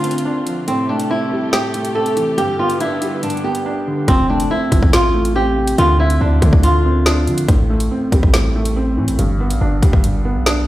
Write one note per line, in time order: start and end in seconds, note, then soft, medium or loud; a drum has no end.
0.00 0.66 D3 medium
0.00 0.69 D3 medium
0.00 0.68 A3 medium
0.00 0.04 C4 medium
0.00 0.64 C4 medium
0.00 0.24 D4 medium
0.00 0.64 F4 medium
0.00 0.66 F4 medium
0.00 closed hi-hat medium
0.00 downlifter medium
0.04 0.68 C4 medium
0.11 closed hi-hat medium
0.18 closed hi-hat medium
0.25 0.68 D4 medium
0.46 0.68 F3 medium
0.46 closed hi-hat medium
0.68 1.51 A2 medium
0.68 2.36 C3 medium
0.68 2.36 A3 medium
0.68 0.87 C4 loud
0.68 4.05 G4 medium
0.68 closed hi-hat medium
0.89 1.73 A3 medium
0.89 1.09 D4 medium
1.00 closed hi-hat medium
1.10 1.94 C4 medium
1.10 1.50 E4 medium
1.31 2.38 G3 medium
1.53 2.38 A2 medium
1.53 1.93 G4 medium
1.53 snare loud
1.74 2.38 A3 medium
1.74 closed hi-hat medium
1.85 closed hi-hat medium
1.95 2.38 C4 medium
1.95 2.35 A4 medium
2.06 closed hi-hat medium
2.16 2.38 E3 medium
2.16 closed hi-hat medium
2.38 3.21 G2 medium
2.38 4.06 D3 medium
2.38 4.06 B3 medium
2.38 2.57 G4 medium
2.38 closed hi-hat medium
2.59 3.43 B3 medium
2.59 2.79 F4 medium
2.70 closed hi-hat medium
2.80 3.64 D4 medium
2.80 3.20 E4 medium
2.80 closed hi-hat medium
3.02 4.08 G3 loud
3.02 closed hi-hat medium
3.23 4.08 G2 medium
3.23 3.43 D4 medium
3.23 closed hi-hat medium
3.30 closed hi-hat medium
3.37 closed hi-hat soft
3.44 4.08 B3 medium
3.44 4.04 G4 medium
3.55 closed hi-hat medium
3.66 4.08 D4 medium
3.87 4.08 D3 medium
4.08 4.49 F1 loud
4.08 4.91 F2 medium
4.08 4.28 C4 loud
4.08 kick loud
4.08 closed hi-hat medium
4.30 5.13 A3 medium
4.30 4.49 D4 medium
4.40 closed hi-hat medium
4.50 5.34 C4 medium
4.50 4.91 E4 medium
4.72 4.82 F1 loud
4.72 5.78 F3 medium
4.72 kick medium
4.72 closed hi-hat medium
4.83 5.74 A1 loud
4.83 kick loud
4.93 5.78 F2 medium
4.93 5.33 F4 medium
4.93 snare loud
4.93 closed hi-hat medium
5.14 5.78 A3 medium
5.25 closed hi-hat medium
5.36 5.78 C4 loud
5.36 5.76 G4 medium
5.57 5.78 C3 medium
5.67 closed hi-hat medium
5.78 6.19 D2 loud
5.78 6.62 D3 medium
5.78 5.98 F4 loud
5.78 closed hi-hat medium
5.99 6.84 C4 medium
5.99 6.19 E4 medium
6.10 closed hi-hat medium
6.21 6.41 D2 loud
6.21 7.05 D4 medium
6.21 6.61 D4 medium
6.42 6.52 D3 loud
6.42 7.49 A3 medium
6.42 kick medium
6.42 closed hi-hat medium
6.53 7.29 D2 loud
6.53 kick loud
6.63 7.49 D3 medium
6.63 7.45 F4 medium
6.63 closed hi-hat medium
6.85 7.49 C4 medium
7.06 7.49 D4 medium
7.06 snare loud
7.27 7.47 D3 medium
7.27 7.48 F3 medium
7.27 closed hi-hat medium
7.38 closed hi-hat medium
7.48 7.89 A1 loud
7.48 8.32 A2 medium
7.48 kick loud
7.48 closed hi-hat medium
7.70 8.54 A3 medium
7.80 closed hi-hat medium
7.91 8.75 C4 medium
8.12 8.23 A1 loud
8.12 9.19 G3 medium
8.12 kick medium
8.12 closed hi-hat medium
8.23 8.99 A1 loud
8.23 kick loud
8.34 9.19 A2 medium
8.34 snare loud
8.34 closed hi-hat medium
8.55 9.19 A3 medium
8.65 closed hi-hat medium
8.76 9.19 C4 medium
8.97 9.10 A2 loud
8.97 9.19 E3 medium
9.08 9.18 A1 loud
9.08 closed hi-hat medium
9.19 9.52 G1 loud
9.19 10.02 G2 loud
9.19 closed hi-hat medium
9.40 10.23 B3 medium
9.50 9.61 A1 loud
9.50 closed hi-hat medium
9.61 9.82 G1 loud
9.61 10.45 D4 medium
9.82 9.93 D2 loud
9.82 10.67 G3 loud
9.82 kick medium
9.82 closed hi-hat medium
9.93 10.37 G1 loud
9.93 kick medium
10.04 10.67 G2 medium
10.04 closed hi-hat medium
10.25 10.67 B3 medium
10.36 10.66 B1 medium
10.46 10.67 D4 loud
10.46 snare loud